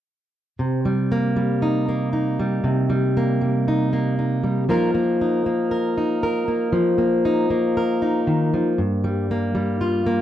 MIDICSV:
0, 0, Header, 1, 2, 480
1, 0, Start_track
1, 0, Key_signature, -3, "minor"
1, 0, Tempo, 1022147
1, 284, Time_signature, 4, 2, 24, 8
1, 4797, End_track
2, 0, Start_track
2, 0, Title_t, "Steel-string acoustic guitar"
2, 0, Program_c, 0, 25
2, 278, Note_on_c, 0, 48, 42
2, 401, Note_on_c, 0, 55, 38
2, 525, Note_on_c, 0, 58, 36
2, 635, Note_off_c, 0, 55, 0
2, 641, Note_on_c, 0, 55, 37
2, 762, Note_on_c, 0, 63, 35
2, 884, Note_off_c, 0, 58, 0
2, 886, Note_on_c, 0, 58, 34
2, 998, Note_off_c, 0, 63, 0
2, 1000, Note_on_c, 0, 63, 40
2, 1119, Note_off_c, 0, 55, 0
2, 1125, Note_on_c, 0, 55, 41
2, 1233, Note_off_c, 0, 48, 0
2, 1239, Note_on_c, 0, 48, 53
2, 1354, Note_off_c, 0, 55, 0
2, 1360, Note_on_c, 0, 55, 47
2, 1487, Note_off_c, 0, 58, 0
2, 1488, Note_on_c, 0, 58, 34
2, 1597, Note_off_c, 0, 55, 0
2, 1603, Note_on_c, 0, 55, 39
2, 1722, Note_off_c, 0, 63, 0
2, 1728, Note_on_c, 0, 63, 39
2, 1843, Note_off_c, 0, 58, 0
2, 1845, Note_on_c, 0, 58, 38
2, 1961, Note_off_c, 0, 63, 0
2, 1966, Note_on_c, 0, 63, 32
2, 2077, Note_off_c, 0, 55, 0
2, 2082, Note_on_c, 0, 55, 36
2, 2174, Note_off_c, 0, 55, 0
2, 2176, Note_off_c, 0, 63, 0
2, 2202, Note_off_c, 0, 48, 0
2, 2202, Note_on_c, 0, 53, 46
2, 2204, Note_off_c, 0, 58, 0
2, 2205, Note_on_c, 0, 58, 37
2, 2208, Note_on_c, 0, 63, 41
2, 2211, Note_on_c, 0, 70, 44
2, 2320, Note_off_c, 0, 58, 0
2, 2322, Note_on_c, 0, 58, 44
2, 2442, Note_off_c, 0, 63, 0
2, 2448, Note_on_c, 0, 63, 35
2, 2563, Note_off_c, 0, 58, 0
2, 2564, Note_on_c, 0, 58, 41
2, 2681, Note_off_c, 0, 70, 0
2, 2683, Note_on_c, 0, 70, 47
2, 2801, Note_off_c, 0, 63, 0
2, 2806, Note_on_c, 0, 63, 31
2, 2924, Note_off_c, 0, 70, 0
2, 2926, Note_on_c, 0, 70, 49
2, 3041, Note_off_c, 0, 58, 0
2, 3042, Note_on_c, 0, 58, 42
2, 3156, Note_off_c, 0, 53, 0
2, 3158, Note_on_c, 0, 53, 53
2, 3273, Note_off_c, 0, 58, 0
2, 3278, Note_on_c, 0, 58, 44
2, 3400, Note_off_c, 0, 63, 0
2, 3405, Note_on_c, 0, 63, 39
2, 3518, Note_off_c, 0, 58, 0
2, 3523, Note_on_c, 0, 58, 47
2, 3643, Note_off_c, 0, 70, 0
2, 3649, Note_on_c, 0, 70, 45
2, 3761, Note_off_c, 0, 63, 0
2, 3766, Note_on_c, 0, 63, 40
2, 3884, Note_on_c, 0, 51, 41
2, 4004, Note_off_c, 0, 51, 0
2, 4007, Note_off_c, 0, 53, 0
2, 4009, Note_on_c, 0, 53, 43
2, 4096, Note_off_c, 0, 63, 0
2, 4098, Note_off_c, 0, 70, 0
2, 4125, Note_on_c, 0, 43, 47
2, 4126, Note_off_c, 0, 53, 0
2, 4246, Note_on_c, 0, 55, 44
2, 4363, Note_off_c, 0, 58, 0
2, 4372, Note_on_c, 0, 58, 38
2, 4478, Note_off_c, 0, 55, 0
2, 4484, Note_on_c, 0, 55, 44
2, 4606, Note_on_c, 0, 65, 44
2, 4721, Note_off_c, 0, 58, 0
2, 4727, Note_on_c, 0, 58, 37
2, 4797, Note_off_c, 0, 43, 0
2, 4797, Note_off_c, 0, 55, 0
2, 4797, Note_off_c, 0, 58, 0
2, 4797, Note_off_c, 0, 65, 0
2, 4797, End_track
0, 0, End_of_file